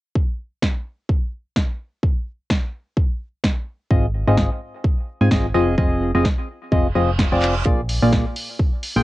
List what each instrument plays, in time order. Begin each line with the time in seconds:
0.15 kick
0.62 kick, snare
1.09 kick
1.56 kick, snare
2.03 kick
2.50 kick, snare
2.97 kick
3.44 kick, snare
3.91 fm bass G#1, synth stab G#2 C4 F4 G#4 D#5, kick
4.27 fm bass G#1, synth stab G#2 C4 F4 G#4 D#5
4.37 kick, snare
4.84 kick
5.21 fm bass G#2, synth stab G#2 C4 F4 G#4 G#5
5.31 fm bass G#1, synth stab F3 C4 F4 G#4 D#5, kick, snare
5.54 fm bass F1, synth stab F3 C4 F4 G#4 D#5
5.78 fm bass F1, synth stab F3 C4 F4 G#4 D#5, kick
6.15 fm bass F1, synth stab F3 C4 F4 G#4 D#5
6.25 kick, snare
6.72 fm bass F1, synth stab F3 C4 F4 G#4 D#5, kick, reverse cymbal
6.95 fm bass F1, synth stab F3 C4 F4 G#4 D#5
7.19 kick, snare
7.32 fm bass F1, synth stab F3 C4 F4 G#4 D5
7.42 clap
7.66 fm bass A#1, synth stab A#2 A#3 F4 G#4 D5, kick
7.89 open hi-hat
8.02 fm bass A#1, synth stab A#2 A#3 F4 G#4 D5
8.12 kick, snare
8.36 open hi-hat
8.59 kick
8.83 open hi-hat
8.96 fm bass A#1, synth stab A#2 A#3 F4 G#4 G5